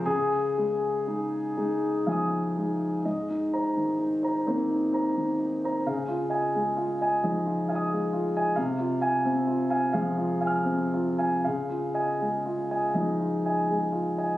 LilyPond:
<<
  \new Staff \with { instrumentName = "Grand piano" } { \time 6/8 \key des \lydian \tempo 4. = 42 << { r2 <f'' aes'' ees'''>4 | r2. | r2 <f'' aes'' ees'''>4 | r2 <f'' aes'' f'''>4 |
r2. | } \\ { aes'2~ aes'8 r8 | ees''16 ees'16 <c'' bes''>16 ees16 ees'16 <c'' bes''>16 c''16 ees'16 <c'' bes''>16 ees16 ees'16 <c'' bes''>16 | f''16 f'16 <ees'' aes''>16 aes16 f'16 <ees'' aes''>16 ees''16 f'16 <ees'' aes''>16 aes16 f'16 <ees'' aes''>16 | f''16 f'16 <f'' aes''>16 c'16 f'16 <f'' aes''>16 f''16 f'16 aes''16 c'16 f'16 <f'' aes''>16 |
f''16 f'16 <ees'' aes''>16 aes16 f'16 <ees'' aes''>16 ees''16 f'16 <ees'' aes''>16 aes16 f'16 <ees'' aes''>16 | } >> }
  \new Staff \with { instrumentName = "Grand piano" } { \clef bass \time 6/8 \key des \lydian des8 aes8 <aes ees'>8 <aes ees'>8 f8 <aes ees'>8 | aes,4. <ees bes c'>4. | des4. <f aes ees'>4. | c4. <f aes>4. |
des4. <f aes ees'>4. | }
>>